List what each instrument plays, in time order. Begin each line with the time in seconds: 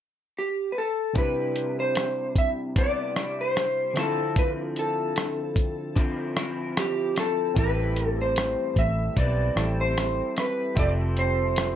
0.38 electric slide guitar G4
0.72 electric slide guitar B4
0.78 electric slide guitar A4
1.13 synth keys C3 C4 D4 E4, clean electric guitar C3 G3, kick, closed hi-hat
1.18 clean electric guitar E4, synth keys G4, electric slide guitar B4
1.56 closed hi-hat
1.80 electric slide guitar C5
1.95 cross-stick, closed hi-hat
2.36 electric slide guitar E5, kick, closed hi-hat
2.76 clean electric guitar C3 G3 B3 E4, electric slide guitar D5, kick, closed hi-hat
3.16 clean electric guitar G3 E4, cross-stick, closed hi-hat
3.41 electric slide guitar C5
3.57 cross-stick, closed hi-hat
3.93 synth keys D3 C4 E4 F4, clean electric guitar C4 E4, cross-stick, closed hi-hat
3.98 clean electric guitar D3 F3, synth keys A4, electric slide guitar A4
4.36 electric slide guitar B4, kick, closed hi-hat
4.76 electric slide guitar A4, closed hi-hat
5.16 cross-stick, closed hi-hat
5.56 kick, closed hi-hat
5.96 clean electric guitar D3 F3 C4 E4, kick, closed hi-hat
6.36 clean electric guitar F3 C4 E4, cross-stick, closed hi-hat
6.77 electric slide guitar G4, cross-stick, closed hi-hat
7.16 electric slide guitar A4, cross-stick, closed hi-hat
7.54 fingered electric bass A1, clean electric guitar A2 E3 G3 C4, synth keys C4 E4 G4, kick, closed hi-hat
7.58 clean electric guitar E4, synth keys A4, electric slide guitar B4
7.96 closed hi-hat
8.07 electric slide guitar A4
8.22 electric slide guitar C5
8.36 cross-stick, closed hi-hat
8.76 fingered electric bass A1, electric slide guitar E5, kick, closed hi-hat
9.16 fingered electric bass B1, clean electric guitar G3 C4 E4 B4, electric slide guitar D5, kick, closed hi-hat
9.55 fingered electric bass A1, clean electric guitar G3 C4 E4, synth keys C4 E4 G4 A4, cross-stick, closed hi-hat
9.81 electric slide guitar C5
9.98 cross-stick, closed hi-hat
10.37 electric slide guitar B4, cross-stick, closed hi-hat
10.75 fingered electric bass F1, clean electric guitar F3 G3 C4 E4 A4, synth keys C4 G4 E5, kick, closed hi-hat
10.79 synth keys A4, electric slide guitar D5
11.17 electric slide guitar C5, closed hi-hat
11.56 cross-stick, closed hi-hat